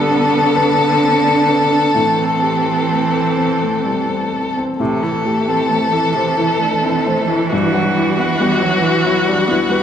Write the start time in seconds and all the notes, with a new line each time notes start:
Already playing: G2 D3 B3 G4 A4
0.11 B3
0.34 A4
0.56 B4
0.78 D4
1.03 C4
1.24 D4
1.48 B4
1.71 D4
1.94 A2 E3 C4
2.19 A4
2.42 G4
2.66 A4
2.90 A3
3.14 A4
3.37 C4
3.63 A3
3.85 G3
4.09 C4
4.33 A4
4.57 C4
4.79 A2 C3 E3 A4
5.02 E3 A4
5.25 A3 G4
5.47 C4 A4
5.70 A3 C4
5.92 E3 A4
6.14 C3 C5
6.36 E3 E4
6.58 A3
6.62 D4
6.82 C4 E4
7.05 A3 C5
7.27 E3 E4
7.51 G2 E3 F#4
7.72 F#3 F#4
7.96 G3 E4
8.18 B3 F#4
8.40 G3 B3
8.61 F#3 F#4
8.82 E3 B4
9.04 F#3 E4
9.26 G3 D4
9.47 B3 E4
9.69 G3 B4